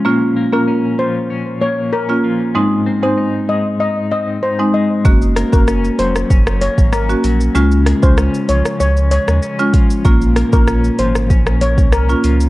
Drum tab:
HH |----------------|----------------|--x---x---x---x-|--x---x---x---x-|
SH |----------------|----------------|xxxxxxxxxxxxxxxx|xxxxxxxxxxxxxxxx|
SD |----------------|----------------|--r-r--r-r--r---|--r-r--r---r----|
BD |----------------|----------------|o--o----o--o----|---o----------o-|

HH |--x---x---x---x-|
SH |xxxxxxxxxxxxxxxx|
SD |--r-r--r-r--r---|
BD |o--o----o--o----|